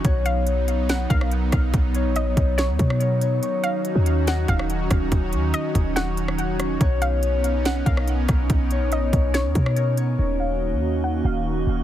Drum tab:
HH |x-x-x-x-x-x-x-x-|x-x-x-x-x-x-x-x-|x-x-x-x-x-x-x-x-|x-x-x-x-x-x-x-x-|
SD |--------o--r--r-|--------o--r----|--------o--r--r-|--------o--r--r-|
BD |o---------o---o-|o-----o---o-----|----------o---o-|o-----o---------|

HH |x-x-x-x-x-x-x-x-|x-x-x-x-x-x-x-x-|----------------|
SD |--------o--r--r-|--------o--r----|----------------|
BD |o---------o---o-|o-----o---o-----|----------------|